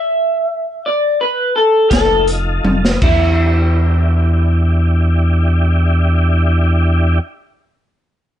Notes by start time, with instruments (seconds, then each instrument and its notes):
Already playing: clean electric guitar E5
0.86 clean electric guitar D5
1.21 clean electric guitar B4
1.56 clean electric guitar A4
1.89 sub bass F1, tonewheel organ D#4 F4 A4, clean electric guitar A4, kick, closed hi-hat
1.93 snare
2.28 closed hi-hat
2.63 sub bass F1, high tom
2.85 snare
3.01 sub bass E2, tonewheel organ D4 E4 G4, clean electric guitar E4, kick, crash